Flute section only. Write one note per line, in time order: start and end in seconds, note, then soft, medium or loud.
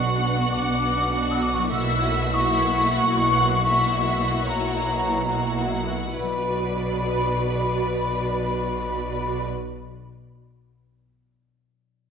0.00 0.52 C#6 medium
0.52 1.30 D6 medium
1.31 1.41 E6 medium
1.42 1.51 D6 medium
1.53 1.62 C#6 medium
1.62 1.72 D6 medium
1.72 2.32 E6 medium
2.34 4.46 C#6 medium
4.47 5.86 A#5 medium
6.17 9.48 B5 soft